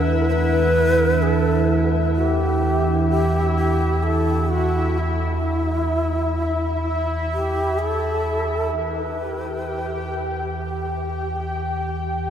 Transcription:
0.00 8.77 E2 medium
0.00 8.74 E3 medium
0.00 8.76 E3 medium
0.00 8.74 D4 medium
0.00 8.74 E4 medium
0.00 8.76 E4 medium
0.00 8.76 A4 medium
0.00 0.28 B4 loud
0.00 8.76 E5 medium
0.00 8.75 F#5 medium
0.29 1.24 B4 loud
0.29 0.33 C5 medium
1.22 1.90 A4 loud
2.16 3.07 G4 medium
3.10 3.55 G4 medium
3.57 4.05 G4 medium
4.03 4.53 A4 medium
4.51 5.00 F#4 medium
4.98 7.10 E4 medium
7.34 7.81 G4 medium
7.79 8.73 A4 medium
8.71 12.30 G4 medium
8.71 8.83 A#4 loud
8.76 12.30 E2 medium
8.76 12.30 E3 medium
8.76 12.30 G5 medium
8.83 10.63 B4 loud
10.61 12.02 G4 medium

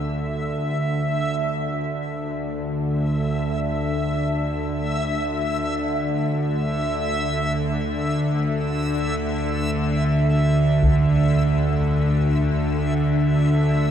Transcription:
0.00 13.91 D2 medium
0.00 13.91 D3 medium
0.00 13.91 A3 medium
0.00 13.91 D4 medium
0.00 13.91 D5 medium
0.00 13.91 E5 medium
0.00 13.91 A5 medium
10.82 taiko medium

